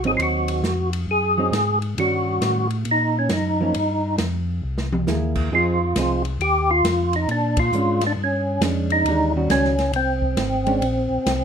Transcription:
0.04 G#1 F#3 C4 D#4 G#4, ride
0.17 D#2 F4, ride
0.23 F#4
0.48 ride
0.62 F2, snare, hi-hat pedal
0.93 ride
1.07 F#2 G#4
1.38 F#3 C4 D#4
1.52 G#2, snare, hi-hat pedal, ride
1.82 ride
1.97 G2 D#3 G3 C#4 F#4, ride
2.42 A2, snare, hi-hat pedal, ride
2.70 ride
2.85 A#2, ride
2.91 D#4
3.19 C#4
3.29 F#2 D#4, snare, hi-hat pedal, ride
3.61 F3 A#3 C#4
3.74 G2, ride
4.18 F2, snare, hi-hat pedal, ride
4.63 C2
4.78 snare
4.92 mid tom
5.07 D#2 A#3 E4 G#4, snare, hi-hat pedal
5.35 kick, crash
5.51 F2 F3 C4 D#4 F4 G#4
5.95 C2 F3 C4 D#4 G#4, snare, hi-hat pedal, ride
6.25 ride
6.39 D#2 G4, ride
6.71 F4
6.83 F2, snare, hi-hat pedal, ride
7.13 D#4, ride
7.28 A#2 D4, ride
7.57 F4, kick, ride
7.73 G#2 G#3 C#4 D4, hi-hat pedal
8.01 snare, ride
8.07 D4
8.17 G2
8.24 C#4
8.61 F2 G#3 C#4 D4, snare, hi-hat pedal, ride
8.90 D#4, ride
9.05 D#2 E3 G#3 D4, ride
9.09 G4
9.36 D#3 G3 C#4 F#4
9.49 C#2 C#4, snare, hi-hat pedal, ride
9.65 snare
9.79 snare, ride
9.92 C2 C4, ride
10.22 kick
10.37 G#1, snare, hi-hat pedal, ride
10.66 G#3 C#4 D4, ride
10.81 A#1, ride
11.10 A#1
11.26 C2, snare, hi-hat pedal, ride

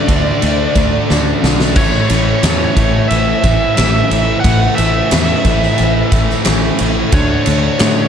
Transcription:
Already playing: D3 A3 D4 D5
0.08 D2 D3 A3 D4, kick, ride
0.41 D2 D3 A3 D4, ride
0.75 D2 D3 A3 D4, kick, ride
1.09 D2 D3 A3 D4, snare
1.42 B1 D3 A3 D4, snare
1.60 snare
1.76 A1 A2 E3 A3 C#5, kick, crash
2.10 A1 A2 E3 A3, ride
2.43 E2 A2 E3 A3, snare, ride
2.76 A1 A2 E3 A3, kick, ride
3.08 A1 A2 E3 A3 E5, ride
3.44 A1 A2 E3 A3, kick, ride
3.75 A1 A2 E3 A3 E5, snare, ride
4.11 A1 A2 E3 A3, ride
4.40 F#5
4.44 A1 A2 E3 A3, kick, ride
4.75 A1 A2 E3 A3 E5, ride
5.10 E2 A2 E3 A3, snare, ride
5.45 A1 A2 E3 A3, kick, ride
5.63 snare
5.78 A1 A2 E3 A3, ride
6.12 A1 A2 E3 A3, kick, ride
6.30 snare
6.45 A1 A2 E3 A3, snare, ride
6.79 A1 A2 E3 A3, ride
7.12 D2 D3 A3 D4 C#5, kick, ride
7.46 D2 D3 A3 D4, ride
7.79 A2 D3 A3 D4, snare, ride

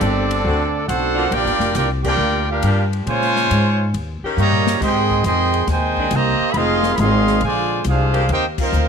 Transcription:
Already playing: D#3 G3 A3 C4 D4 G4 A4 D5
0.01 G1, hi-hat pedal, ride
0.31 ride
0.44 D2 D3 A3 C4 F#4, kick
0.86 B1 A3 C4 D4 F#4 A4 C5 F#5, kick, hi-hat pedal, ride
1.15 F3 A#3 D4 F4
1.30 A#1 A#3 D4 F4 G4 A#4 D5 G5, kick, ride
1.45 G1, snare
1.59 F1, snare
1.74 C2 A#3 D4 F4 G4 A#4 D5 G5, kick, snare, hi-hat pedal, ride
2.03 F3 A#3 D4 F4 G4 A#4 D5 G5, kick, crash
2.17 D2
2.49 A#3 D4 F4 G4 A#4 F5
2.62 G2 F3 A#3 D4 G4, kick, hi-hat pedal, ride
2.93 ride
3.06 A#2 C#3 F3 G#3 F4 C5 C#5 G#5, kick, ride
3.22 snare
3.36 snare
3.50 G#2, kick, hi-hat pedal, ride
3.94 D#2, kick, ride
4.23 D#3 A#3 C#4 G4, muted upright bass stroke
4.37 G2 C#3 G3 A#3 G4 C#5 D#5 A#5, hi-hat pedal
4.52 mid tom
4.67 snare
4.80 G#2 D#3 G#3 C4 G4 G#4 D#5 G5 C6, kick, snare, crash
5.10 kick
5.24 F2 D#3 G#3 C4 G#4 D#5 G5 C6, hi-hat pedal, ride
5.54 ride
5.67 D#2 C3 D#3 G#3, kick, snare, ride
5.71 D#4 C5 G5 G#5
5.97 D#3 G#3 C4 D4, kick
6.11 C2 A#3 G4 C5 D#5 A#5, hi-hat pedal, ride
6.40 muted upright bass stroke
6.51 F1 G#3 B5, kick, ride
6.55 D#3 G#3 C4 F4 G#4 D#5 F5 C6
6.83 snare
6.95 G#1 B5, kick, hi-hat pedal, ride
6.99 D#3 G#3 C4 G#4 D#5 F5 C6
7.27 snare
7.41 A#1 D3 F3 G#3 F4 C5 D5 G#5, kick, ride
7.84 C2 G#3 D4 F4, kick, hi-hat pedal, ride
7.89 D4 G#4 C5 F5
8.13 D#3 A#3 C4 G4, ride
8.29 D#2 A#3 C4 D#4 G4 A#4 C5 G5, ride
8.58 A#3 C4 D#4 F4 A#4 C5 F5, kick, crash
8.72 D2, hi-hat pedal

